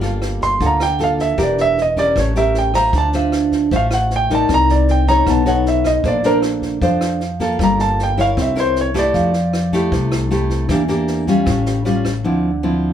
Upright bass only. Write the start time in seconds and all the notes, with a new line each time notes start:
Already playing: G1
0.61 D2
1.38 E1
2.16 A1
2.93 D2
3.72 A1
4.50 C2
5.27 B1
6.04 A#1
6.82 F2
7.59 G1
8.37 C2
9.15 F2
9.92 C2
10.69 E2
11.47 A1
12.24 D2